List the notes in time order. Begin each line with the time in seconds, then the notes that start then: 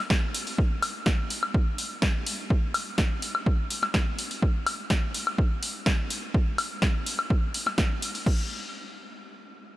0.10 kick, snare
0.35 open hi-hat
0.47 open hi-hat
0.58 kick
0.82 open hi-hat, high woodblock
1.06 kick, snare
1.30 open hi-hat
1.43 high woodblock
1.54 kick
1.78 open hi-hat
2.02 kick, snare
2.27 open hi-hat
2.50 kick
2.74 open hi-hat, high woodblock
2.98 kick, snare
3.22 open hi-hat
3.35 high woodblock
3.46 kick
3.70 open hi-hat
3.83 snare, high woodblock
3.94 kick, snare
4.19 open hi-hat
4.31 open hi-hat
4.42 kick
4.67 open hi-hat, high woodblock
4.90 kick, snare
5.14 open hi-hat
5.27 high woodblock
5.38 kick
5.63 open hi-hat
5.86 kick, snare
6.10 open hi-hat
6.34 kick
6.58 open hi-hat, high woodblock
6.82 kick, snare
7.06 open hi-hat
7.19 high woodblock
7.30 kick
7.54 open hi-hat
7.66 snare, high woodblock
7.78 kick, snare
8.02 open hi-hat
8.15 open hi-hat
8.26 kick, crash